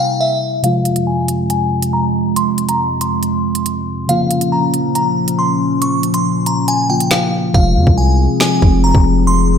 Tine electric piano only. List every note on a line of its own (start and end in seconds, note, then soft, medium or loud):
0.00 0.59 C3 medium
0.00 0.60 G3 medium
0.00 0.60 A#3 medium
0.00 0.61 E4 medium
0.63 4.05 C3 medium
0.63 4.05 F3 medium
0.63 4.06 G#3 medium
0.63 4.06 F4 medium
4.08 6.85 C#3 medium
4.08 6.86 F3 medium
4.08 6.86 A#3 medium
4.08 6.87 F4 medium
6.89 7.54 C#3 medium
6.89 7.53 F3 soft
6.89 7.55 A#3 soft
6.89 7.55 F4 medium
7.53 9.58 C3 medium
7.53 9.58 F3 medium
7.53 9.58 G#3 medium
7.53 9.58 F4 medium